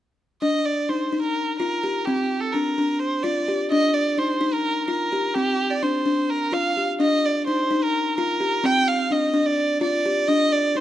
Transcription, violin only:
0.42 D#5
0.65 D5
0.89 C5
1.22 A#4
1.59 A#4
2.05 G4
2.40 A4
2.52 A#4
2.99 C5
3.23 D5
3.70 D#5
3.94 D5
4.18 C5
4.53 A#4
4.88 A#4
5.35 G4
5.70 D5
5.82 C5
6.30 A#4
6.53 F5
7.00 D#5
7.25 D5
7.47 C5
7.83 A#4
8.18 A#4
8.66 G5
8.88 F5
9.12 D#5
9.46 D5
9.82 D5
10.27 D#5
10.52 D5
10.76 C5

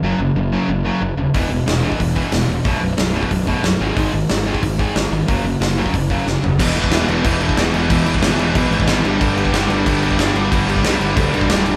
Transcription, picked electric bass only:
0.02 F#1
0.19 F#1
0.35 F#1
0.68 F#1
1.01 F#1
1.17 D#1
1.34 E1
1.50 E1
1.66 E1
2.00 E1
2.32 E1
2.48 E1
2.65 B0
2.82 B0
2.98 B0
3.31 B0
3.64 B0
3.81 G#1
3.96 G#1
4.13 G#1
4.30 G#1
4.63 G#1
4.96 G#1
5.11 G#1
5.29 F#1
5.44 F#1
5.60 F#1
5.94 F#1
6.26 F#1
6.43 F#1
6.59 E1
6.90 E1
7.08 E1
7.25 E1
7.57 E1
7.74 E1
7.90 E1
8.06 E1
8.22 G#1
8.38 E1
8.55 B1
8.70 G#1
8.87 G#1
9.04 G1
9.21 G1
9.54 G1
9.69 G1
9.86 G1
10.18 G1
10.34 G1
10.52 G1
10.67 G1
10.83 B1
11.00 G1
11.16 D2
11.33 B1
11.49 D1

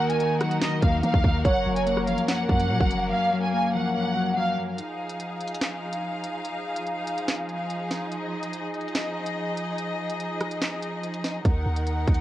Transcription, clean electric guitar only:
Already playing: D#3
0.00 A#3
0.20 D#4
0.41 F#3
0.62 D#3
0.82 A#3
1.03 A#3
1.24 D#3
1.45 F#2
1.66 F#3
1.87 A#3
2.07 F3
2.29 F#2
2.49 F#3
2.70 F#3
2.91 F#2
3.12 F#2
3.33 F#3
3.53 A#3
3.74 F3
3.95 F#2
4.16 F#3
4.37 F#3
4.58 F#2

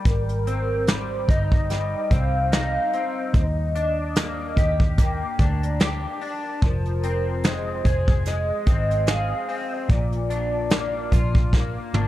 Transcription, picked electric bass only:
0.05 G#1
1.28 G1
2.11 C2
3.34 D#2
4.57 D#2
5.39 D2
6.62 F1
7.85 F1
8.67 G#1
9.89 A#1
11.12 A#1
11.94 G#1

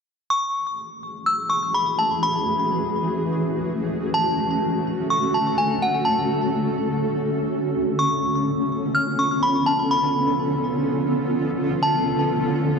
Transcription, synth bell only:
0.30 C#6
1.26 E6
1.50 C#6
1.74 B5
1.99 A5
2.23 B5
4.14 A5
5.10 C#6
5.34 A5
5.58 G#5
5.82 F#5
6.05 A5
7.99 C#6
8.95 F6
9.19 C#6
9.43 B5
9.66 A5
9.91 B5
11.83 A5

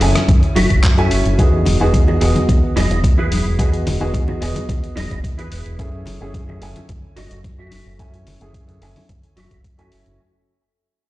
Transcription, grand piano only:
0.00 A3 C#4 E4 G#5
0.98 A3 C#4 E4 G#5
1.38 B3 D#4 F#4 G#4
1.80 B3 D#4 F#4 G#4
2.20 B3 F#4 G#4 D#5
3.58 B3 F#4 G#4 D#5
4.00 B3 D#4 F#4 G#4
4.41 B3 F#4 G#4 D#5
5.79 A3 C#4 E4 G#4
6.21 A3 C#4 E4 G#4
6.61 A3 C#4 E4 G#5
7.99 A3 C#4 E4 G#5
8.41 A3 C#4 E4 G#4
8.81 A3 C#4 E4 G#5
9.78 A3 C#4 E4 G#5

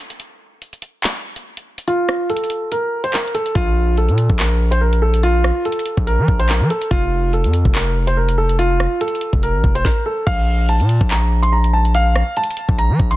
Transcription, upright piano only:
1.88 F4
2.30 A4
2.72 A#4
3.04 C5
3.14 A#4
3.34 A4
3.55 F4
3.98 A4
4.39 A#4
4.71 C5
4.81 A#4
5.02 A4
5.23 F4
5.65 A4
6.07 A#4
6.39 C5
6.49 A#4
6.70 A4
6.91 F4
7.33 A4
7.75 A#4
8.07 C5
8.17 A#4
8.38 A4
8.59 F4
9.01 A4
9.43 A#4
9.75 C5
9.85 A#4
10.06 A4
10.27 F5
10.69 A5
11.11 A#5
11.43 C6
11.52 A#5
11.73 A5
11.95 F5
12.37 A5
12.78 A#5
13.11 C6

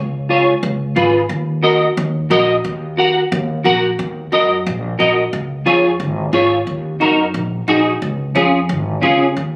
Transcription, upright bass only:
Already playing: C#2
0.63 C#2
0.96 G#1
1.29 D#2
1.97 D#2
2.31 A#1
2.64 D#2
3.32 D#2
3.65 A#1
3.99 D#2
4.32 F#2
4.67 A#1
5.00 A#1
5.33 C#2
5.66 F2
6.00 G#1
6.33 G#1
6.67 D#2
7.01 F#2
7.34 A#1
7.68 A#1
8.02 C#2
8.35 F2
8.69 G#1
9.03 C#2
9.37 D#2

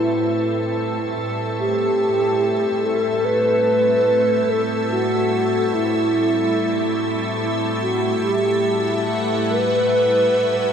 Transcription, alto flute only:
Already playing: E4
1.59 G4
2.85 A4
3.25 B4
4.50 A4
4.91 F#4
5.74 E4
7.82 F#4
8.24 G4
9.51 B4

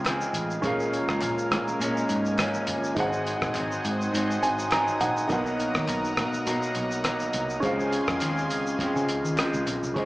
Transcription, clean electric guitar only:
0.04 C#3 F3 G#3 C4
0.62 A#2 F3 G#3
0.67 C#4
1.79 A#2 F3 G#3 C#4
2.37 A#2 F3 G#3 C#4
2.96 G#2 D#3 F#3 C4 D#4
3.54 D#3 F#3 C4 D#4
4.13 D#3 F#3 C4 D#4
4.70 D#3 F#3 C4 D#4
5.28 B2 F#3 A#3
5.33 D#4
6.45 B2 F#3 A#3 D#4
7.03 B2 F#3 A#3 D#4
7.63 C#3 F3 G#3 C4
8.20 C#3 F3 G#3 C4
8.78 C#3 F3 G#3 C4
9.36 C#3 F3 G#3 C4
9.95 C#3 F3 G#3
10.00 C4

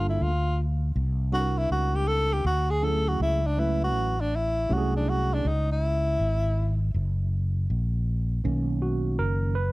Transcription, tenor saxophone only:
0.10 E4
0.23 F4
1.34 F#4
1.58 E4
1.72 F#4
1.95 G4
2.08 A4
2.33 G4
2.47 F#4
2.70 G#4
2.84 A4
3.08 F#4
3.22 E4
3.47 D4
3.60 E4
3.84 F#4
4.21 D4
4.36 E4
4.74 F#4
4.96 D4
5.10 F#4
5.34 D4
5.48 D#4
5.72 E4

